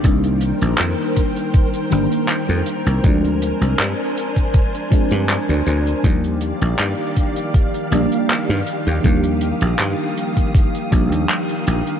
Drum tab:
HH |xxxxx-xxxxxxxxxx|xxxxx-xxxxxxxxxx|xxxxx-xxxxxxxxxx|xxxxx-xxxxxxxxxx|
CP |----x-------x---|----x-------x---|----x-------x---|----x-------x---|
BD |o-----o-o-------|o------oo-o-----|o-----o-o-------|o------oo-o-----|